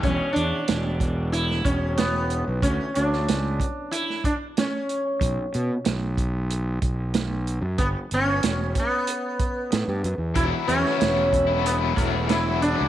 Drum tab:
HH |x-x-x-x-x-x-x-x-|x-x-x-x-x-x-x-x-|x-x-x-x-x-x-x-x-|x-x-x-x-x-x-x-x-|
SD |----o----o--o---|---oo----o--o---|----o-------o---|----o-------o---|
BD |o-----o---o-----|o-----o---o-----|o-----o---o-----|o-----o---o-----|

HH |x-x-x-x-x-x-x-x-|
SD |---oo-------o---|
BD |o-----o---o-----|